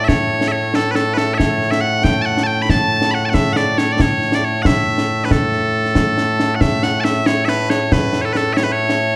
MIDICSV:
0, 0, Header, 1, 3, 480
1, 0, Start_track
1, 0, Key_signature, 3, "major"
1, 0, Tempo, 434783
1, 98, Time_signature, 6, 3, 24, 8
1, 10112, End_track
2, 0, Start_track
2, 0, Title_t, "Bagpipes"
2, 0, Program_c, 0, 109
2, 0, Note_on_c, 0, 45, 89
2, 0, Note_on_c, 0, 57, 89
2, 49, Note_on_c, 0, 76, 99
2, 90, Note_off_c, 0, 76, 0
2, 90, Note_on_c, 0, 73, 99
2, 529, Note_off_c, 0, 73, 0
2, 529, Note_on_c, 0, 76, 95
2, 573, Note_off_c, 0, 76, 0
2, 573, Note_on_c, 0, 73, 95
2, 831, Note_off_c, 0, 73, 0
2, 831, Note_on_c, 0, 69, 93
2, 1008, Note_off_c, 0, 69, 0
2, 1008, Note_on_c, 0, 71, 86
2, 1057, Note_off_c, 0, 71, 0
2, 1057, Note_on_c, 0, 69, 86
2, 1258, Note_off_c, 0, 69, 0
2, 1258, Note_on_c, 0, 71, 96
2, 1299, Note_off_c, 0, 71, 0
2, 1299, Note_on_c, 0, 69, 96
2, 1481, Note_off_c, 0, 69, 0
2, 1481, Note_on_c, 0, 76, 96
2, 1523, Note_off_c, 0, 76, 0
2, 1523, Note_on_c, 0, 73, 96
2, 1886, Note_off_c, 0, 73, 0
2, 1886, Note_on_c, 0, 76, 93
2, 1996, Note_off_c, 0, 76, 0
2, 1996, Note_on_c, 0, 78, 108
2, 2245, Note_off_c, 0, 78, 0
2, 2245, Note_on_c, 0, 79, 114
2, 2449, Note_off_c, 0, 79, 0
2, 2449, Note_on_c, 0, 81, 101
2, 2488, Note_off_c, 0, 81, 0
2, 2488, Note_on_c, 0, 78, 101
2, 2687, Note_off_c, 0, 78, 0
2, 2687, Note_on_c, 0, 81, 112
2, 2724, Note_on_c, 0, 79, 112
2, 2725, Note_off_c, 0, 81, 0
2, 2891, Note_off_c, 0, 79, 0
2, 2891, Note_on_c, 0, 83, 78
2, 2979, Note_off_c, 0, 83, 0
2, 2979, Note_on_c, 0, 81, 123
2, 3432, Note_off_c, 0, 81, 0
2, 3432, Note_on_c, 0, 83, 101
2, 3468, Note_off_c, 0, 83, 0
2, 3468, Note_on_c, 0, 78, 101
2, 3592, Note_off_c, 0, 78, 0
2, 3592, Note_on_c, 0, 81, 79
2, 3637, Note_off_c, 0, 81, 0
2, 3637, Note_on_c, 0, 78, 79
2, 3690, Note_off_c, 0, 78, 0
2, 3690, Note_on_c, 0, 76, 114
2, 3894, Note_off_c, 0, 76, 0
2, 3894, Note_on_c, 0, 78, 100
2, 3936, Note_off_c, 0, 78, 0
2, 3936, Note_on_c, 0, 74, 100
2, 4173, Note_off_c, 0, 74, 0
2, 4173, Note_on_c, 0, 73, 104
2, 4332, Note_off_c, 0, 73, 0
2, 4332, Note_on_c, 0, 74, 83
2, 4428, Note_off_c, 0, 74, 0
2, 4428, Note_on_c, 0, 73, 112
2, 4802, Note_off_c, 0, 73, 0
2, 4802, Note_on_c, 0, 74, 85
2, 4907, Note_off_c, 0, 74, 0
2, 4907, Note_on_c, 0, 73, 92
2, 5103, Note_off_c, 0, 73, 0
2, 5103, Note_on_c, 0, 78, 108
2, 5145, Note_off_c, 0, 78, 0
2, 5145, Note_on_c, 0, 76, 108
2, 5793, Note_off_c, 0, 76, 0
2, 5793, Note_on_c, 0, 71, 67
2, 5871, Note_off_c, 0, 71, 0
2, 5871, Note_on_c, 0, 69, 88
2, 7233, Note_off_c, 0, 69, 0
2, 7233, Note_on_c, 0, 78, 76
2, 7296, Note_off_c, 0, 78, 0
2, 7296, Note_on_c, 0, 76, 120
2, 7543, Note_off_c, 0, 76, 0
2, 7543, Note_on_c, 0, 78, 100
2, 7732, Note_off_c, 0, 78, 0
2, 7732, Note_on_c, 0, 81, 106
2, 7773, Note_off_c, 0, 81, 0
2, 7773, Note_on_c, 0, 76, 106
2, 8020, Note_off_c, 0, 76, 0
2, 8020, Note_on_c, 0, 73, 111
2, 8225, Note_off_c, 0, 73, 0
2, 8225, Note_on_c, 0, 76, 107
2, 8267, Note_off_c, 0, 76, 0
2, 8267, Note_on_c, 0, 71, 107
2, 8498, Note_off_c, 0, 71, 0
2, 8498, Note_on_c, 0, 73, 107
2, 8747, Note_off_c, 0, 73, 0
2, 8747, Note_on_c, 0, 71, 104
2, 9067, Note_off_c, 0, 71, 0
2, 9067, Note_on_c, 0, 73, 91
2, 9110, Note_off_c, 0, 73, 0
2, 9110, Note_on_c, 0, 69, 91
2, 9197, Note_off_c, 0, 69, 0
2, 9197, Note_on_c, 0, 71, 96
2, 9239, Note_off_c, 0, 71, 0
2, 9239, Note_on_c, 0, 69, 96
2, 9420, Note_off_c, 0, 69, 0
2, 9420, Note_on_c, 0, 76, 109
2, 9461, Note_off_c, 0, 76, 0
2, 9461, Note_on_c, 0, 73, 109
2, 9532, Note_off_c, 0, 73, 0
2, 9532, Note_on_c, 0, 71, 96
2, 9626, Note_off_c, 0, 71, 0
2, 9626, Note_on_c, 0, 73, 121
2, 10112, Note_off_c, 0, 45, 0
2, 10112, Note_off_c, 0, 57, 0
2, 10112, Note_off_c, 0, 73, 0
2, 10112, End_track
3, 0, Start_track
3, 0, Title_t, "Drums"
3, 94, Note_on_c, 9, 35, 57
3, 94, Note_on_c, 9, 38, 84
3, 204, Note_off_c, 9, 35, 0
3, 204, Note_off_c, 9, 38, 0
3, 455, Note_on_c, 9, 38, 75
3, 566, Note_off_c, 9, 38, 0
3, 814, Note_on_c, 9, 38, 88
3, 925, Note_off_c, 9, 38, 0
3, 1053, Note_on_c, 9, 38, 71
3, 1163, Note_off_c, 9, 38, 0
3, 1296, Note_on_c, 9, 38, 72
3, 1407, Note_off_c, 9, 38, 0
3, 1541, Note_on_c, 9, 35, 49
3, 1541, Note_on_c, 9, 38, 76
3, 1651, Note_off_c, 9, 35, 0
3, 1651, Note_off_c, 9, 38, 0
3, 1782, Note_on_c, 9, 38, 26
3, 1892, Note_off_c, 9, 38, 0
3, 1900, Note_on_c, 9, 38, 69
3, 2011, Note_off_c, 9, 38, 0
3, 2256, Note_on_c, 9, 35, 53
3, 2256, Note_on_c, 9, 38, 92
3, 2366, Note_off_c, 9, 35, 0
3, 2366, Note_off_c, 9, 38, 0
3, 2621, Note_on_c, 9, 38, 65
3, 2732, Note_off_c, 9, 38, 0
3, 2974, Note_on_c, 9, 35, 52
3, 2974, Note_on_c, 9, 38, 81
3, 3084, Note_off_c, 9, 35, 0
3, 3084, Note_off_c, 9, 38, 0
3, 3330, Note_on_c, 9, 38, 74
3, 3440, Note_off_c, 9, 38, 0
3, 3689, Note_on_c, 9, 35, 54
3, 3689, Note_on_c, 9, 38, 96
3, 3800, Note_off_c, 9, 35, 0
3, 3800, Note_off_c, 9, 38, 0
3, 3931, Note_on_c, 9, 38, 72
3, 4042, Note_off_c, 9, 38, 0
3, 4174, Note_on_c, 9, 38, 79
3, 4285, Note_off_c, 9, 38, 0
3, 4411, Note_on_c, 9, 35, 59
3, 4411, Note_on_c, 9, 38, 94
3, 4522, Note_off_c, 9, 35, 0
3, 4522, Note_off_c, 9, 38, 0
3, 4655, Note_on_c, 9, 38, 27
3, 4765, Note_off_c, 9, 38, 0
3, 4772, Note_on_c, 9, 38, 77
3, 4882, Note_off_c, 9, 38, 0
3, 5134, Note_on_c, 9, 35, 58
3, 5134, Note_on_c, 9, 38, 102
3, 5245, Note_off_c, 9, 35, 0
3, 5245, Note_off_c, 9, 38, 0
3, 5497, Note_on_c, 9, 38, 69
3, 5607, Note_off_c, 9, 38, 0
3, 5861, Note_on_c, 9, 35, 61
3, 5861, Note_on_c, 9, 38, 92
3, 5971, Note_off_c, 9, 35, 0
3, 5971, Note_off_c, 9, 38, 0
3, 6099, Note_on_c, 9, 38, 25
3, 6209, Note_off_c, 9, 38, 0
3, 6463, Note_on_c, 9, 38, 28
3, 6573, Note_off_c, 9, 38, 0
3, 6573, Note_on_c, 9, 35, 54
3, 6573, Note_on_c, 9, 38, 95
3, 6683, Note_off_c, 9, 35, 0
3, 6683, Note_off_c, 9, 38, 0
3, 6819, Note_on_c, 9, 38, 71
3, 6929, Note_off_c, 9, 38, 0
3, 7062, Note_on_c, 9, 38, 74
3, 7172, Note_off_c, 9, 38, 0
3, 7297, Note_on_c, 9, 35, 61
3, 7297, Note_on_c, 9, 38, 96
3, 7407, Note_off_c, 9, 35, 0
3, 7407, Note_off_c, 9, 38, 0
3, 7538, Note_on_c, 9, 38, 79
3, 7649, Note_off_c, 9, 38, 0
3, 7780, Note_on_c, 9, 38, 87
3, 7891, Note_off_c, 9, 38, 0
3, 8018, Note_on_c, 9, 38, 104
3, 8129, Note_off_c, 9, 38, 0
3, 8259, Note_on_c, 9, 38, 75
3, 8369, Note_off_c, 9, 38, 0
3, 8503, Note_on_c, 9, 38, 85
3, 8613, Note_off_c, 9, 38, 0
3, 8742, Note_on_c, 9, 35, 61
3, 8742, Note_on_c, 9, 38, 103
3, 8853, Note_off_c, 9, 35, 0
3, 8853, Note_off_c, 9, 38, 0
3, 8975, Note_on_c, 9, 38, 74
3, 9085, Note_off_c, 9, 38, 0
3, 9221, Note_on_c, 9, 38, 75
3, 9332, Note_off_c, 9, 38, 0
3, 9460, Note_on_c, 9, 38, 94
3, 9570, Note_off_c, 9, 38, 0
3, 9818, Note_on_c, 9, 38, 71
3, 9929, Note_off_c, 9, 38, 0
3, 10112, End_track
0, 0, End_of_file